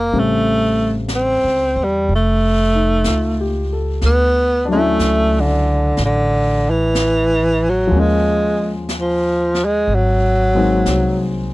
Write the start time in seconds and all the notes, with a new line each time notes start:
Already playing: F3 G3 A#3 C4 F4 D5
0.11 A1 C#3 G3 A3 C4, brush sweep
0.19 A3
1.08 brush sweep, snare, hi-hat pedal
1.15 C4
1.44 C#2
1.76 E2
1.84 G3
2.07 F1, brush sweep
2.16 A3
2.75 D#4
3.04 C#2 F4, brush sweep, snare, hi-hat pedal
3.40 G4
3.73 A4
4.02 D2, brush sweep, snare
4.06 B3
4.65 F#3 D4
4.71 A3 C#4
4.77 E4
4.99 C#2, brush sweep, snare, hi-hat pedal
5.41 D3
5.97 A1, brush sweep, snare
6.05 D3
6.70 E3
6.95 brush sweep, snare, hi-hat pedal
7.69 F#3
7.87 D#2 F3 G#3
7.93 A#3 C#4, brush sweep
7.98 G#3 F4
8.89 brush sweep, snare, hi-hat pedal
9.01 F3
9.55 snare
9.65 G#3
9.87 G#1, brush sweep
9.95 F#3
10.55 F#3 G#3 A#3 C4 D#4
10.86 C2, brush sweep, snare, hi-hat pedal